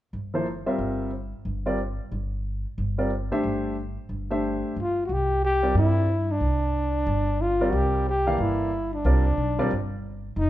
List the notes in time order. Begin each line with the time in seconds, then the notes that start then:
0.13 G1
0.34 F3 A#3 E4 A4 C5
0.66 G3 C4 F4 A#4 E5
0.78 G1
1.45 G1
1.66 G3 C4 F4 A#4 D5
2.12 G1
2.78 G1
2.98 G3 C4 F4 A#4 D5
3.32 A3 D4 G4 C5 E5
3.44 G1
4.09 G1
4.30 A3 D4 G4 C5 E5
4.76 G1
4.81 F4
5.06 C2 F#4
5.13 G4
5.45 G4
5.63 G3 C4 F4 A#4 D5
5.75 G2 E4
6.32 D4
6.40 C2
7.06 G1
7.42 F4
7.61 G3 C4 F4 A#4 D5
7.70 C2 F#4
7.75 G4
8.09 G4
8.27 E3 A#3 A4 D5 F5
8.38 G1 E4
8.94 D4
9.04 C2 G3 C4 F4 A#4 D5
9.37 B1
9.59 G3 C4 F4 A#4 D5
9.71 G1
10.36 F1 D#4